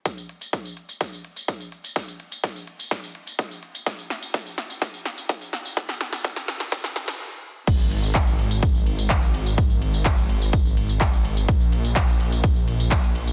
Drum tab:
CC |----------------|----------------|----------------|----------------|
RD |----------------|----------------|----------------|----------------|
HH |xxoxxxoxxxoxxxox|xxoxxxoxxxoxxxox|xxoxxxoxxxoxxxox|xxoxxxoxxxox----|
TB |xx-xxx-xxx-xxx-x|xx-xxx-xxx-xxx-x|xx-xxx-xxx-xxx-x|-x-xxx-xxx-x----|
CP |----------------|----------------|----------------|----------------|
SD |o---o---o---o---|o---o---o---o---|o-o-o-o-o-o-o-o-|oooooooooooo----|
BD |o---o---o---o---|o---o---o---o---|o---o---o---o---|o---o---o-------|

CC |x---------------|----------------|----------------|
RD |x-x-x-x-x-x-x-x-|x-x-x-x-x-x-x-x-|x-x-x-x-x-x-x-x-|
HH |xxoxxxoxxxoxxxox|xxoxxxoxxxoxxxox|xxoxxxoxxxoxxxox|
TB |xx-xxx-xxx-xxx-x|xx-xxx-xxx-xxx-x|xx-xxx-xxx-xxx-x|
CP |----x-------x---|----x-------x---|----x-------x---|
SD |----------------|----------------|----------------|
BD |o---o---o---o---|o---o---o---o---|o---o---o---o---|